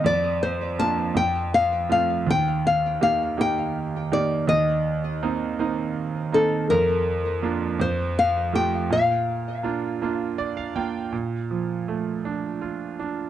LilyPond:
<<
  \new Staff \with { instrumentName = "Nylon-string guitar" } { \time 6/8 \key bes \major \tempo 4. = 54 d''8 c''8 a''8 g''8 f''8 f''8 | g''8 f''8 f''8 g''4 d''8 | ees''2~ ees''8 a'8 | bes'4. c''8 f''8 g''8 |
f''2 r4 | r2. | }
  \new Staff \with { instrumentName = "Grand piano" } { \time 6/8 \key bes \major << { r2. | r2. | r2. | r2. |
r2 d''16 f''16 g''8 | r2. | } \\ { f,4 <bes d' f'>8 f,4 <a c' f'>8 | ees,4 <bes ees' g'>8 <bes ees' g'>4 <bes ees' g'>8 | ees,4 <bes c' ees'>8 <bes c' ees'>4 <bes c' ees'>8 | f,4 <bes d' f'>8 f,4 <a f' g'>8 |
bes,4 <bes d' f'>8 <bes d' f'>4 <bes d' f'>8 | bes,8 f8 a8 d'8 f'8 d'8 | } >> }
>>